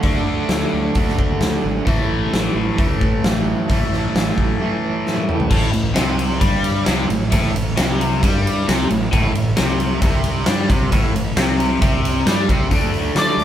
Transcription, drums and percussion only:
0.03 kick medium
0.03 open hi-hat soft
0.49 snare loud
0.49 open hi-hat medium
0.95 kick medium
0.95 open hi-hat soft
1.08 snare soft
1.19 kick medium
1.41 snare medium
1.41 open hi-hat soft
1.87 kick medium
1.87 open hi-hat soft
2.33 snare loud
2.33 open hi-hat soft
2.78 kick loud
2.78 open hi-hat soft
3.01 kick medium
3.24 snare loud
3.24 open hi-hat soft
3.70 kick medium
3.70 open hi-hat soft
3.93 snare soft
4.16 snare loud
4.16 open hi-hat soft
4.38 kick medium
5.07 snare soft
5.17 high tom medium
5.29 mid tom medium
5.40 floor tom medium
5.51 kick medium
5.51 crash loud
5.73 ride medium
5.96 snare loud
5.96 ride medium
6.19 ride medium
6.41 kick loud
6.41 ride medium
6.64 ride medium
6.86 snare loud
6.86 ride medium
7.10 ride medium
7.32 kick medium
7.32 ride medium
7.56 ride medium
7.77 snare loud
7.77 ride medium
8.01 ride medium
8.23 kick loud
8.23 ride medium
8.47 ride medium
8.69 snare loud
8.69 ride medium
8.90 ride medium
9.13 kick loud
9.13 ride medium
9.35 ride medium
9.57 snare loud
9.57 ride medium
9.80 ride medium
10.02 kick loud
10.02 ride medium
10.24 ride medium
10.46 snare loud
10.46 ride medium
10.70 kick loud
10.70 ride medium
10.92 kick medium
10.92 ride medium
11.16 ride medium
11.37 snare loud
11.37 ride medium
11.60 ride medium
11.82 kick loud
11.82 ride medium
12.05 ride medium
12.27 snare medium
12.27 ride medium
12.49 kick medium
12.49 ride medium
12.71 kick medium
12.71 open hi-hat medium
12.94 open hi-hat soft
13.16 snare loud
13.16 open hi-hat medium
13.39 open hi-hat soft

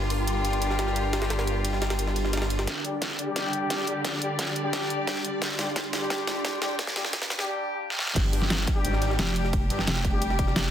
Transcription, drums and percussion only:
0.10 closed hi-hat medium
0.10 open hi-hat medium
0.27 closed hi-hat medium
0.27 ride medium
0.45 closed hi-hat medium
0.45 ride medium
0.53 closed hi-hat soft
0.62 closed hi-hat medium
0.62 ride medium
0.70 snare soft
0.79 snare medium
0.79 closed hi-hat medium
0.79 ride medium
0.87 snare soft
0.96 closed hi-hat medium
0.96 ride medium
1.13 snare loud
1.13 closed hi-hat medium
1.13 ride medium
1.22 snare loud
1.22 ride medium
1.30 snare loud
1.30 closed hi-hat medium
1.30 ride medium
1.39 snare loud
1.39 ride medium
1.47 closed hi-hat medium
1.47 ride medium
1.65 closed hi-hat loud
1.65 ride medium
1.73 snare soft
1.82 snare loud
1.82 closed hi-hat medium
1.82 ride medium
1.90 snare loud
1.90 closed hi-hat soft
1.90 ride medium
1.99 closed hi-hat medium
1.99 ride medium
2.07 snare soft
2.16 closed hi-hat medium
2.16 ride medium
2.25 snare soft
2.33 snare medium
2.33 closed hi-hat medium
2.33 ride medium
2.37 snare medium
2.37 ride medium
2.42 snare loud
2.42 ride medium
2.50 closed hi-hat medium
2.50 ride medium
2.59 snare loud
2.59 closed hi-hat soft
2.59 ride medium
2.67 kick loud
2.67 snare soft
2.67 closed hi-hat medium
2.85 closed hi-hat medium
3.02 kick medium
3.02 snare medium
3.02 closed hi-hat loud
3.19 closed hi-hat medium
3.36 kick loud
3.36 snare medium
3.36 closed hi-hat loud
3.53 closed hi-hat medium
3.70 kick loud
3.70 snare medium
3.70 closed hi-hat loud
3.87 closed hi-hat medium
4.05 kick medium
4.05 snare medium
4.05 closed hi-hat medium
4.22 closed hi-hat medium
4.39 kick loud
4.39 snare medium
4.39 closed hi-hat loud
4.56 closed hi-hat medium
4.73 kick loud
4.73 snare medium
4.73 closed hi-hat loud
4.90 closed hi-hat medium
5.07 kick loud
5.07 snare medium
5.07 closed hi-hat loud
5.25 closed hi-hat medium
5.42 kick loud
5.42 snare medium
5.42 closed hi-hat medium
5.59 snare medium
5.59 closed hi-hat medium
5.76 kick loud
5.76 snare medium
5.76 closed hi-hat loud
5.93 snare medium
5.93 closed hi-hat medium
6.10 kick loud
6.10 snare medium
6.10 closed hi-hat loud
6.27 snare medium
6.27 closed hi-hat medium
6.45 kick loud
6.45 snare medium
6.45 closed hi-hat loud
6.62 snare medium
6.62 closed hi-hat medium
6.79 kick loud
6.79 snare medium
6.79 closed hi-hat medium
6.87 snare medium
6.96 snare loud
6.96 closed hi-hat medium
7.05 snare medium
7.13 kick loud
7.13 snare loud
7.13 closed hi-hat medium
7.22 snare medium
7.30 snare loud
7.30 closed hi-hat medium
7.39 snare medium
7.90 snare medium
7.99 snare medium
8.07 snare medium
8.16 kick loud
8.16 closed hi-hat loud
8.16 ride medium
8.16 crash loud
8.33 closed hi-hat medium
8.33 open hi-hat medium
8.42 snare soft
8.50 snare loud
8.50 closed hi-hat loud
8.50 ride medium
8.67 kick loud
8.67 closed hi-hat medium
8.67 ride medium
8.85 closed hi-hat loud
8.85 ride medium
8.93 snare soft
9.02 snare soft
9.02 closed hi-hat medium
9.02 ride medium
9.10 snare soft
9.19 snare loud
9.19 closed hi-hat loud
9.19 ride medium
9.36 closed hi-hat medium
9.36 ride medium
9.45 snare soft
9.53 kick loud
9.53 closed hi-hat loud
9.53 ride medium
9.70 closed hi-hat medium
9.70 ride medium
9.79 snare soft
9.87 snare loud
9.87 closed hi-hat loud
9.87 ride medium
9.96 snare soft
10.05 kick loud
10.05 closed hi-hat medium
10.05 ride medium
10.22 closed hi-hat loud
10.22 ride medium
10.30 snare soft
10.39 kick loud
10.39 closed hi-hat medium
10.39 ride medium
10.47 snare soft
10.56 snare loud
10.56 closed hi-hat loud
10.56 ride medium

